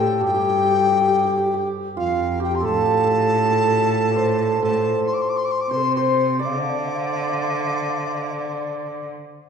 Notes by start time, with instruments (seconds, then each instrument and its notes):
Already playing: cello A2, xiao G4, hammered dulcimer C5 D5 F5, dizi G5
0.00 hammered dulcimer A4
0.07 hammered dulcimer A4
0.21 cello G2, hammered dulcimer G4, dizi G5
0.27 xiao G4, hammered dulcimer G4
0.34 hammered dulcimer G4
0.41 hammered dulcimer G4
0.50 hammered dulcimer G4
0.56 hammered dulcimer G4
0.65 hammered dulcimer G4
0.71 hammered dulcimer G4
0.80 hammered dulcimer G4
0.87 hammered dulcimer G4
0.92 hammered dulcimer G4
1.01 hammered dulcimer G4
1.08 hammered dulcimer G4
1.15 hammered dulcimer G4
1.25 hammered dulcimer G4
1.30 hammered dulcimer G4
1.37 hammered dulcimer G4
1.46 hammered dulcimer G4
1.54 hammered dulcimer G4
1.97 cello F2, hammered dulcimer F4, xiao F4, dizi F5
2.40 hammered dulcimer G4, xiao G4, dizi G5
2.55 dizi C6
2.60 cello A2, hammered dulcimer A4, xiao A4
2.65 hammered dulcimer A4, dizi A5
2.76 hammered dulcimer A4
2.83 hammered dulcimer A4
2.91 hammered dulcimer A4
3.00 hammered dulcimer A4
3.04 hammered dulcimer A4
3.12 hammered dulcimer A4
3.21 hammered dulcimer A4
3.29 hammered dulcimer A4
3.44 hammered dulcimer A4
3.52 hammered dulcimer A4
3.60 hammered dulcimer A4
3.65 hammered dulcimer A4
3.70 hammered dulcimer A4
3.80 hammered dulcimer A4
3.86 hammered dulcimer A4
3.96 hammered dulcimer A4
4.11 hammered dulcimer D5
4.16 hammered dulcimer C5
4.54 hammered dulcimer C5, xiao C5
4.62 cello A2, xiao A4, hammered dulcimer A4, dizi A5
5.06 dizi C6
5.13 dizi D6
5.21 dizi C6
5.28 dizi D6
5.36 dizi C6
5.44 dizi D6
5.51 dizi C6
5.60 dizi D6
5.69 cello C3, hammered dulcimer C5, xiao C5, dizi C6
5.76 xiao A4
5.82 xiao C5
5.95 xiao C5, hammered dulcimer C5, dizi C6
6.39 cello D3, hammered dulcimer D5, xiao D5, dizi D6
6.46 xiao F5
6.54 xiao D5
6.61 xiao F5
6.70 xiao D5
6.79 xiao F5
6.87 xiao D5
6.95 xiao F5
7.05 xiao D5
7.13 xiao F5
7.21 xiao D5
7.30 xiao F5
7.38 xiao D5
7.45 xiao F5
7.52 xiao D5
7.59 xiao F5
7.67 xiao D5
7.72 xiao F5
7.81 xiao D5
7.90 xiao F5
7.98 xiao D5
8.07 xiao F5
8.15 xiao D5
8.23 xiao F5
8.32 xiao D5